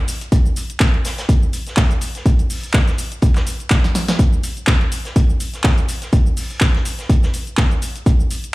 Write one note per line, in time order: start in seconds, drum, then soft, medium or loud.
0.08 closed hi-hat medium
0.08 open hi-hat loud
0.08 cabasa medium
0.21 closed hi-hat soft
0.21 closed hi-hat medium
0.21 cabasa soft
0.32 kick loud
0.32 closed hi-hat medium
0.32 cabasa medium
0.46 cabasa soft
0.56 closed hi-hat medium
0.56 open hi-hat loud
0.56 cabasa medium
0.70 closed hi-hat medium
0.70 cabasa soft
0.80 kick loud
0.80 snare loud
0.80 clap loud
0.80 closed hi-hat medium
0.80 closed hi-hat loud
0.80 cabasa soft
0.94 closed hi-hat soft
1.05 snare loud
1.05 closed hi-hat medium
1.05 open hi-hat loud
1.05 cabasa medium
1.18 snare loud
1.18 closed hi-hat medium
1.18 cabasa soft
1.29 kick loud
1.29 closed hi-hat medium
1.29 cabasa soft
1.43 cabasa soft
1.53 closed hi-hat medium
1.53 open hi-hat loud
1.53 cabasa medium
1.67 snare soft
1.67 closed hi-hat medium
1.67 cabasa soft
1.77 kick loud
1.77 snare loud
1.77 clap loud
1.77 closed hi-hat medium
1.77 cabasa soft
1.90 closed hi-hat soft
1.90 cabasa soft
2.01 closed hi-hat medium
2.01 open hi-hat loud
2.01 cabasa medium
2.15 snare soft
2.15 closed hi-hat medium
2.15 cabasa soft
2.26 kick loud
2.26 closed hi-hat medium
2.26 cabasa soft
2.39 closed hi-hat soft
2.39 cabasa soft
2.50 open hi-hat medium
2.50 open hi-hat loud
2.50 cabasa medium
2.63 closed hi-hat medium
2.63 cabasa soft
2.74 kick loud
2.74 snare loud
2.74 clap loud
2.74 closed hi-hat medium
2.74 cabasa soft
2.87 snare soft
2.87 closed hi-hat soft
2.87 cabasa soft
2.98 closed hi-hat medium
2.98 open hi-hat loud
2.98 cabasa medium
3.12 closed hi-hat medium
3.12 cabasa soft
3.22 kick loud
3.22 closed hi-hat medium
3.22 cabasa soft
3.35 snare medium
3.35 clap soft
3.35 closed hi-hat soft
3.35 cabasa soft
3.47 closed hi-hat medium
3.47 open hi-hat loud
3.47 cabasa medium
3.60 closed hi-hat medium
3.60 cabasa soft
3.70 kick loud
3.70 snare loud
3.70 clap loud
3.70 closed hi-hat medium
3.70 cabasa soft
3.84 snare medium
3.84 closed hi-hat soft
3.84 cabasa soft
3.95 snare medium
3.95 closed hi-hat medium
3.95 open hi-hat loud
3.95 cabasa medium
4.08 snare medium
4.08 snare loud
4.08 closed hi-hat medium
4.08 cabasa soft
4.19 kick loud
4.19 closed hi-hat medium
4.19 cabasa soft
4.33 cabasa soft
4.43 closed hi-hat medium
4.43 open hi-hat loud
4.43 cabasa medium
4.57 closed hi-hat medium
4.57 cabasa soft
4.67 kick loud
4.67 snare loud
4.67 clap loud
4.67 closed hi-hat medium
4.67 cabasa soft
4.81 closed hi-hat soft
4.92 closed hi-hat medium
4.92 open hi-hat loud
4.92 cabasa medium
5.05 snare medium
5.05 closed hi-hat medium
5.05 cabasa soft
5.16 kick loud
5.16 closed hi-hat medium
5.16 cabasa soft
5.30 cabasa soft
5.40 closed hi-hat medium
5.40 open hi-hat loud
5.40 cabasa medium
5.53 snare soft
5.53 closed hi-hat medium
5.53 cabasa soft
5.64 kick loud
5.64 snare loud
5.64 clap loud
5.64 closed hi-hat medium
5.64 cabasa soft
5.77 closed hi-hat soft
5.77 cabasa soft
5.89 closed hi-hat medium
5.89 open hi-hat loud
5.89 cabasa medium
6.02 snare soft
6.02 closed hi-hat medium
6.02 cabasa soft
6.13 kick loud
6.13 closed hi-hat medium
6.13 cabasa soft
6.26 cabasa soft
6.37 open hi-hat medium
6.37 open hi-hat loud
6.37 cabasa medium
6.50 closed hi-hat medium
6.50 cabasa soft
6.61 kick loud
6.61 snare loud
6.61 clap loud
6.61 closed hi-hat medium
6.61 cabasa soft
6.75 snare soft
6.75 closed hi-hat soft
6.85 closed hi-hat medium
6.85 open hi-hat loud
6.85 cabasa medium
6.99 snare medium
6.99 closed hi-hat medium
6.99 cabasa soft
7.10 kick loud
7.10 closed hi-hat medium
7.10 cabasa soft
7.23 snare medium
7.23 cabasa soft
7.34 closed hi-hat medium
7.34 open hi-hat loud
7.34 cabasa medium
7.47 closed hi-hat medium
7.47 cabasa soft
7.57 kick loud
7.57 snare loud
7.57 clap loud
7.57 closed hi-hat medium
7.57 cabasa soft
7.71 closed hi-hat soft
7.71 cabasa soft
7.82 closed hi-hat medium
7.82 open hi-hat loud
7.82 cabasa medium
7.96 closed hi-hat medium
7.96 closed hi-hat soft
7.96 cabasa soft
8.06 kick loud
8.06 closed hi-hat medium
8.06 cabasa soft
8.20 cabasa soft
8.31 closed hi-hat medium
8.31 open hi-hat loud
8.31 cabasa medium
8.44 closed hi-hat medium
8.44 cabasa soft